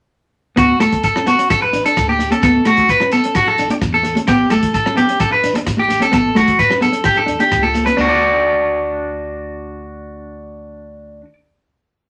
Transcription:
0.56 D2 B3 F#4, kick, cross-stick, closed hi-hat, shekere
0.80 D2 A3 A4, cross-stick, closed hi-hat, high conga, shekere
0.92 D2, kick, closed hi-hat
1.03 A4, kick, closed hi-hat, shekere
1.16 C#4, cross-stick
1.26 B3 F#4, closed hi-hat, low conga, shekere
1.39 C#4, closed hi-hat, shekere
1.50 A4, kick, cross-stick, closed hi-hat, shekere
1.62 B4, low conga, shekere
1.73 A1 D4, closed hi-hat, shekere
1.86 D4 A4, closed hi-hat, shekere
1.97 D2, kick, cross-stick, closed hi-hat, shekere
2.08 G4, high conga, shekere
2.19 closed hi-hat, high conga, low conga, shekere
2.31 C#4 A4, closed hi-hat, high conga, shekere
2.42 D2 B3 A4, kick, cross-stick, closed hi-hat, shekere
2.65 D2 A3 F#4, cross-stick, closed hi-hat, high conga, shekere
2.77 D2, kick, closed hi-hat
2.89 B4, kick, closed hi-hat, shekere
3.00 C#4, cross-stick
3.12 B3 A4, closed hi-hat, shekere
3.24 C#4, closed hi-hat, shekere
3.35 F#4, kick, cross-stick, closed hi-hat, shekere
3.47 A4, low conga, shekere
3.58 A1 D4, closed hi-hat, shekere
3.70 D4, muted clean electric guitar stroke, closed hi-hat, high conga, shekere
3.81 E2, kick, cross-stick, closed hi-hat, shekere
3.93 A4, high conga, shekere
4.03 closed hi-hat, high conga, low conga, shekere
4.15 C#4, closed hi-hat, high conga, shekere
4.28 A1 B3 G4, kick, cross-stick, closed hi-hat, shekere
4.50 A1 A3 A4, cross-stick, closed hi-hat, high conga, shekere
4.63 A1, kick, closed hi-hat
4.74 A4, kick, closed hi-hat, shekere
4.86 C#4, cross-stick
4.96 B3 G4, closed hi-hat, low conga, shekere
5.09 C#4, closed hi-hat, shekere
5.20 A4, kick, cross-stick, closed hi-hat, shekere
5.31 B4, low conga, shekere
5.44 E2 D4, closed hi-hat, shekere
5.54 D4, muted clean electric guitar stroke, closed hi-hat, high conga, shekere
5.67 A1, kick, cross-stick, closed hi-hat, shekere
5.77 G4, high conga, shekere
5.88 closed hi-hat, high conga, low conga, shekere
6.00 C#4 A4, closed hi-hat, high conga
6.12 A1 B3 A4, kick, cross-stick, closed hi-hat, shekere
6.35 A1 A3 F#4, cross-stick, closed hi-hat, high conga, shekere
6.48 A1, kick, closed hi-hat, shekere
6.59 B4, kick, closed hi-hat, shekere
6.70 C#4, cross-stick, shekere
6.81 B3 A4, closed hi-hat, low conga, shekere
6.92 C#4, closed hi-hat, shekere
7.04 G4, kick, cross-stick, closed hi-hat, shekere
7.16 A4, low conga, shekere
7.26 E2 D4, closed hi-hat, shekere
7.39 D4 G4, closed hi-hat, high conga, shekere
7.51 C#2, kick, cross-stick, closed hi-hat, shekere
7.62 A4, high conga, shekere
7.74 closed hi-hat, high conga, low conga, shekere
7.86 C#4 B4, closed hi-hat, high conga, shekere
7.97 D2 D4 F#4, high conga, shekere
8.05 muted clean electric guitar stroke
8.09 D5

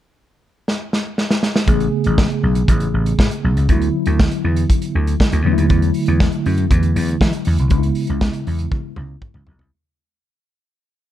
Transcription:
0.68 snare
0.93 snare
1.18 snare
1.31 snare
1.43 snare
1.56 snare
1.66 A1 C#3 A3 B3 G#4, kick, closed hi-hat
1.80 closed hi-hat
2.04 A1, closed hi-hat
2.18 kick, snare
2.30 closed hi-hat
2.43 B1
2.55 closed hi-hat
2.68 A1, kick, closed hi-hat
2.80 closed hi-hat
2.94 A1
3.06 closed hi-hat
3.19 A2, kick, snare
3.31 closed hi-hat
3.44 B1
3.57 C#2, closed hi-hat
3.68 D2 D3 F3 B3 E4, kick, closed hi-hat
3.75 F#3
3.82 closed hi-hat
4.06 D2, closed hi-hat
4.20 kick, snare
4.31 closed hi-hat
4.44 E2
4.57 closed hi-hat
4.70 kick, closed hi-hat
4.82 closed hi-hat
4.95 D2
5.07 closed hi-hat
5.20 kick, snare
5.32 D2, closed hi-hat
5.44 E2 D3 F#3 A3 D4
5.53 E4
5.58 D#2, closed hi-hat
5.70 E2, kick, closed hi-hat
5.82 closed hi-hat
5.94 open hi-hat
6.06 E2, closed hi-hat
6.20 kick, snare
6.32 closed hi-hat
6.46 F#2, open hi-hat
6.58 closed hi-hat
6.71 E2, kick, closed hi-hat
6.83 closed hi-hat
6.96 E2, open hi-hat
7.08 closed hi-hat
7.21 E3, kick, snare
7.33 closed hi-hat
7.45 E2, open hi-hat
7.59 C2, closed hi-hat
7.69 C#2 C#3 G#3 B3 D4, kick, closed hi-hat
7.78 E4
7.83 closed hi-hat
7.95 open hi-hat
8.07 C#2, closed hi-hat
8.21 kick, snare
8.33 closed hi-hat
8.47 E2, open hi-hat
8.59 closed hi-hat
8.72 kick, high tom
8.96 C#2, mid tom
9.22 kick, mid tom
9.34 C#2, mid tom
9.47 B1, floor tom
9.59 C2, floor tom

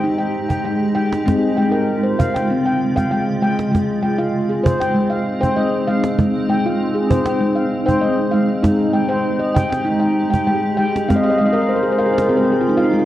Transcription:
Already playing: G#3 D#4 G4 G5
0.04 D#4
0.18 G5
0.35 cajon slap
0.49 G5, cajon bass
0.65 G#3 G5
0.95 G#3 G5
1.13 cajon slap
1.26 C#3 G#3 C4 F4, cajon bass, cajon slap
1.44 cajon slap
1.57 G#3 G5
1.72 A#4 G5, cajon slap
2.03 C5, cajon slap
2.19 F5, cajon bass
2.34 G5, cajon slap
2.50 C4
2.66 G5
2.83 cajon slap
2.96 F5 G5, cajon bass
3.11 G#3 G5
3.42 G#3 G5
3.59 cajon slap
3.71 G#3 C4 D#4, cajon bass, cajon slap
3.91 cajon slap
4.03 G#3 G5
4.18 F4 F5
4.49 G#4, cajon slap
4.64 C5, cajon bass
4.80 G5, cajon slap
4.94 G#3
5.10 F5
5.28 cajon slap
5.41 C5 G5, cajon bass
5.56 G#3 D#5
5.88 G#3 F5
6.04 cajon slap
6.18 G#3, cajon bass
6.49 G#3 G5, cajon slap
6.66 F4 F5
6.81 cajon slap
6.95 G#4, cajon slap
7.11 C5, cajon bass
7.26 G5, cajon slap
7.41 G#3
7.55 F5, cajon slap
7.86 C5 G5, cajon bass
8.01 G#3 D#5
8.20 cajon slap
8.31 G#3 F5
8.63 G#3 D#4 G4, cajon bass, cajon slap
8.79 cajon slap
8.93 G#3 G5
9.09 C5 G5, cajon slap
9.39 D#5, cajon slap
9.55 G5, cajon bass
9.70 G5, cajon slap
9.85 D#4
10.00 G5
10.18 cajon slap
10.30 G5, cajon bass
10.47 G#3 G5
10.77 G#3 G5
10.96 cajon slap
11.08 C#3 G#3 C4 F4 F5, cajon bass, cajon slap
11.16 D#5
11.23 F5, cajon slap
11.30 D#5
11.38 G#3 F5
11.46 D#5
11.53 A#4 F5, cajon slap
11.61 D#5
11.69 C5
11.76 A#4
11.83 G#4
11.88 cajon slap
11.92 C5
11.98 A#4 F5
12.06 G#4
12.14 C5
12.18 A#4, cajon slap
12.29 C4 G#4
12.37 C5
12.44 A#4
12.52 G#4
12.61 F4, cajon slap
12.69 D#4
12.77 F4 F5
12.84 D#4
12.92 G#3 F4
12.99 D#4

